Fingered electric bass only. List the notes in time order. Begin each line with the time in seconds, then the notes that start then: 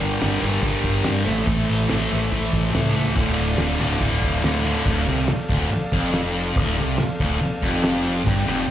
0.00 G1
0.22 G1
0.43 G1
0.63 G1
0.84 G1
1.08 G2
1.27 A1
1.47 A1
1.70 A1
1.91 A1
2.13 A1
2.32 A1
2.53 A1
2.74 C#2
3.17 D1
3.38 D1
3.60 D1
3.81 D1
4.01 D1
4.23 D1
4.44 D2
4.86 D1
5.08 C2
5.30 muted fingered electric bass stroke
5.50 D1
5.71 muted fingered electric bass stroke
5.93 F1
6.56 D1
6.78 C2
7.00 muted fingered electric bass stroke
7.20 D1
7.44 muted fingered electric bass stroke
7.63 F1
8.27 G1
8.48 F1